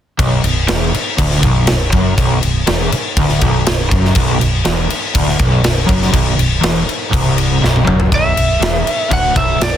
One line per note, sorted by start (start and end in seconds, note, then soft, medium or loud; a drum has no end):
0.18 0.43 B0 medium
0.18 0.43 B1 loud
0.18 kick loud
0.18 crash medium
0.44 0.67 B0 medium
0.44 0.64 B1 medium
0.44 crash medium
0.68 0.93 E1 medium
0.68 0.92 E2 loud
0.68 snare loud
0.68 crash medium
0.94 muted overdriven electric guitar stroke medium
0.94 crash medium
1.18 1.42 D1 loud
1.18 1.42 D2 loud
1.18 kick loud
1.18 crash medium
1.31 snare soft
1.43 1.66 B0 loud
1.43 1.68 B1 loud
1.43 kick loud
1.43 crash medium
1.67 1.92 B0 medium
1.67 1.88 B1 medium
1.67 snare loud
1.67 crash medium
1.92 2.16 F#1 medium
1.92 2.16 F#2 loud
1.92 kick loud
1.92 crash medium
2.17 2.41 B0 loud
2.17 2.40 B1 loud
2.17 kick loud
2.17 crash medium
2.41 2.66 B0 medium
2.41 2.62 B1 medium
2.41 crash medium
2.67 2.91 E1 medium
2.67 2.91 E2 loud
2.67 snare loud
2.67 crash medium
2.92 muted overdriven electric guitar stroke medium
2.92 muted fingered electric bass stroke soft
2.92 crash medium
3.17 3.40 D1 medium
3.17 3.42 D2 loud
3.17 kick loud
3.17 crash medium
3.29 snare soft
3.41 3.65 B0 loud
3.41 3.66 B1 loud
3.41 kick loud
3.41 crash medium
3.66 3.91 B0 medium
3.66 3.87 B1 medium
3.66 snare loud
3.66 crash medium
3.91 4.15 F#1 medium
3.91 4.15 F#2 loud
3.91 kick loud
3.91 crash medium
4.05 snare soft
4.15 4.39 B0 medium
4.15 4.39 B1 loud
4.15 kick loud
4.15 crash medium
4.40 4.65 B0 medium
4.40 4.60 B1 medium
4.40 crash medium
4.65 4.89 E1 loud
4.65 4.89 E2 loud
4.65 snare loud
4.65 crash medium
4.89 muted overdriven electric guitar stroke medium
4.89 muted fingered electric bass stroke soft
4.89 crash medium
5.15 5.39 D1 loud
5.15 5.39 D2 loud
5.15 kick loud
5.15 crash medium
5.28 snare soft
5.39 5.63 B0 loud
5.39 5.62 B1 loud
5.39 kick loud
5.39 crash medium
5.63 5.88 B0 medium
5.63 5.84 B1 medium
5.63 snare loud
5.63 crash medium
5.86 6.13 F#1 medium
5.86 6.11 F#2 loud
5.86 kick loud
5.86 crash medium
6.02 snare soft
6.12 6.37 B0 medium
6.12 6.35 B1 loud
6.12 kick loud
6.12 crash medium
6.36 6.62 B0 medium
6.36 6.57 B1 medium
6.36 crash medium
6.61 6.87 E1 medium
6.61 6.85 E2 loud
6.61 snare loud
6.61 crash medium
6.86 muted overdriven electric guitar stroke medium
6.86 muted fingered electric bass stroke soft
6.86 crash medium
7.11 7.60 C1 loud
7.11 7.61 C2 loud
7.11 kick loud
7.11 crash medium
7.38 crash medium
7.62 7.87 B0 medium
7.62 7.84 B1 loud
7.62 snare medium
7.76 high tom medium
7.85 8.11 F#1 loud
7.85 8.10 F#2 loud
7.85 mid tom loud
8.00 floor tom medium
8.12 8.36 B0 medium
8.12 8.35 B1 loud
8.12 9.10 E5 loud
8.12 kick loud
8.12 crash medium
8.36 8.60 B0 medium
8.36 8.56 B1 medium
8.36 crash medium
8.60 8.85 E1 medium
8.60 8.84 E2 loud
8.60 snare loud
8.60 crash medium
8.85 muted overdriven electric guitar stroke medium
8.85 muted fingered electric bass stroke soft
8.85 crash medium
9.10 9.35 D1 medium
9.10 9.34 D2 loud
9.10 9.36 F#5 medium
9.10 kick loud
9.10 crash medium
9.35 9.59 B0 medium
9.35 9.59 B1 medium
9.35 9.61 E5 medium
9.35 kick loud
9.35 crash medium
9.60 9.77 B0 medium
9.60 9.77 B1 medium
9.60 9.77 D5 loud
9.60 snare loud
9.60 crash medium